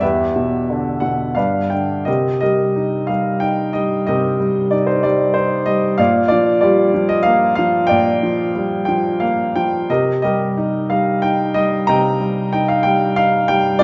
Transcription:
0.01 E2 G4 B4 E5
0.36 B2
0.70 D3
1.00 B2 F#5
1.35 G2 B4 D5 F5
1.70 D3 G5
2.05 C3 G4 A#4 D#5
2.41 G3 G4 A#4 D#5
2.76 D#4
3.07 G3 F5
3.40 D#4 G5
3.73 G3 D#5
4.07 C3 G4 A#4 D#5
4.40 G3
4.71 D#4 D5
4.87 C5
5.03 G3 D5
5.34 D#4 C5
5.66 G3 D#5
5.98 A#2 D5 F5
6.28 F3 D5
6.61 G3 F4 G4 D5
6.94 F3
7.09 D#5
7.23 A#3 F5
7.55 F3 F5
7.87 D5 G5
7.91 A#2
8.23 F3
8.55 G3
8.85 F3 G5
9.20 A#3 F5
9.56 F3 G5
9.90 C3 G4 A#4 D#5
10.22 G3 G4 A#4 D#5
10.57 D#4
10.90 G3 F5
11.22 D#4 G5
11.54 G3 D#5
11.87 C3 D#5 G5 A#5
12.21 G3
12.53 D#4 G5
12.68 F5
12.83 G3 G5
13.16 D#4 F5
13.48 G3 G5
13.79 F4 G4 D5

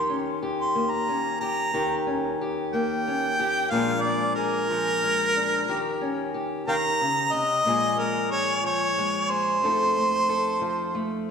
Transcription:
Already playing: D#3 G4 C6
0.09 C#4
0.42 G4
0.61 C6
0.75 A#3
0.91 A#5
1.09 C#4
1.41 G4 A#5
1.74 D#3 G4
2.07 C#4
2.41 G4
2.73 A#3 G5
3.07 C#4
3.39 G4
3.71 A#2 F3 G#3 D4 G#4 F5
4.02 D5
4.06 G#3
4.35 G#4 A#4
4.70 F3
5.03 G#3
5.36 D4
5.68 D#3 G4
6.01 C#4
6.34 G4
6.67 D#3 F5 G5 A#5
7.01 C#3
7.33 C3 D#5
7.65 A#2 F3 G#3 G#4
7.99 G#3 A#4
8.31 G#4 C#5
8.64 F3 C#5
8.98 G#3
9.30 G#4 C5
9.62 F2 F3 A3 D#4 A4
9.96 A3
10.29 A4
10.61 F3
10.95 A3

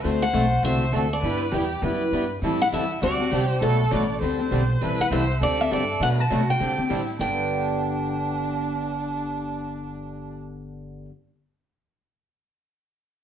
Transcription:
0.03 D2 D3 A3 C4 F#4 A4 C5
0.22 F#5
0.33 B1 D3 A3 C4 F#4 A4
0.63 C2 D3 A3 C4 F#4 A4 E5
0.93 D2 D3 A3 C4 F#4 A4
1.13 D5
1.22 G2 G3 B3 E4 G4 B4
1.52 E2 G3 B3 E4 G4
1.82 F#2 G3 B3 E4 G4 B4
2.12 G2 G3 B3 E4 G4
2.42 A2 E3 G3 C4 E4 A4
2.62 F#5
2.72 E2 E3 G3 C4 E4 A4 E5
3.02 D2 D3 G3 C4 D4 F#4 G4 D5
3.20 C4 D4 G4
3.31 C2 D3 G3 C4 D4 G4
3.50 C5
3.61 B1 B2 F#3 A3 D4 F#4 A4 B4
3.91 A1 B2 F#3 A3 D4 F#4 B4 D5
4.21 D2 D3 G3 C4 D4 G4 C5
4.39 C4 D4 G4
4.51 B1 D3 G3 C4 D4 G4
4.81 A1 E3 G3 C4 E4 A4 B4
4.99 F#5, muted upright bass stroke
5.10 C2 E3 G3 C4 E4 A4 C5 E5
5.41 D2 D3 G3 C4 D4 G4 A4 D5
5.58 C4 D4 G4 E5
5.70 G2 D3 G3 C4 D4 G4 D5
6.00 B2 F#3 A3 D4 F#4 B4 F#5
6.20 A5
6.30 B2 C3 F#3 A3 D4 F#4 B4
6.50 G5
6.60 D3 G3 C4 D4 G4
6.77 C4 D4 G4, muted upright bass stroke
6.89 A2 D3 G3 C4 D4 E4 G4
7.19 G1 G2 D3 B3 D4 G4 G5

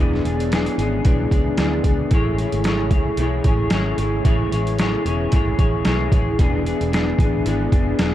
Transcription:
Already playing: E1 D3 E3 G#3 C#4 E4
0.00 E3 B3 D4 G#4
0.14 snare
0.25 E1 B3 D4 G#4, closed hi-hat
0.40 closed hi-hat
0.52 E3 B3 D4 G#4, snare, closed hi-hat
0.66 closed hi-hat
0.78 G#1 B3 D4 G#4, closed hi-hat
1.05 B1 E3 B3 D4 G#4, kick, closed hi-hat
1.31 C#2 B3 D4 G#4, kick, closed hi-hat
1.57 D2 E3 B3 D4 G#4, snare, closed hi-hat
1.84 C#2 B3 D4 G#4, kick, closed hi-hat
2.11 A1 C#3 A3 E4 G#4 C#5, kick, closed hi-hat
2.38 E4 G#4 C#5, closed hi-hat
2.52 G#1, closed hi-hat
2.64 A3 E4 G#4 C#5, snare, closed hi-hat
2.91 C#2 G#4 C#5, kick, closed hi-hat
2.95 E4
3.17 B1 A3 E4 G#4, closed hi-hat
3.22 C#5
3.44 A1 E4 G#4 C#5, kick, closed hi-hat
3.70 G#1 A3 E4 G#4 C#5, snare, closed hi-hat
3.97 G#1 G#4 C#5, closed hi-hat
4.02 E4
4.24 A1 A3 B3 E4 G#4 C#5, kick, closed hi-hat
4.51 A1 E4 G#4 C#5, closed hi-hat
4.67 closed hi-hat
4.79 A3 E4 G#4 C#5, snare, closed hi-hat
5.05 E1 E4 G#4 C#5, closed hi-hat
5.32 G#1 A3 E4 G#4 C#5, kick, closed hi-hat
5.59 A1 E4 G#4 C#5, kick, closed hi-hat
5.85 B1 A3 E4 G#4 C#5, snare, closed hi-hat
6.12 A1 G#4 C#5, kick, closed hi-hat
6.16 E4
6.39 E1 D3 E3 G#3 B3 D4 E4 G#4, kick, closed hi-hat
6.65 B3 D4 G#4, closed hi-hat
6.81 E1, closed hi-hat
6.92 E3 B3 D4 G#4, snare, closed hi-hat
7.19 A1 D4 G#4, kick, closed hi-hat
7.23 B3
7.45 G#1 E3 B3 D4 G#4, closed hi-hat
7.72 F#1 B3 D4 G#4, kick, closed hi-hat
7.99 E1 E3 B3 D4 G#4, snare, closed hi-hat

